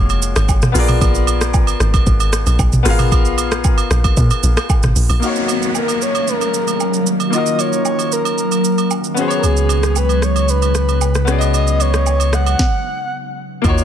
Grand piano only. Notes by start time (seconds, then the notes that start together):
Already playing: G#3 A#3 F4 F#4 G#4 C#5
0.72 B3 F4 G#4
0.78 A#4 D5
2.83 B3 F4 G#4
2.88 A#4 F5
5.20 A#3 D#4 F5
5.25 F#4 C#5
7.30 A#3 D#4 F4
7.35 F#4 A#4
9.14 B3 C#4 F#4
9.20 G#4 C5
9.28 C#5
11.25 B3 C#4 F#4
11.30 G#4 D5
11.38 D#5
13.62 A#3 D#4 F4
13.67 F#4 C#5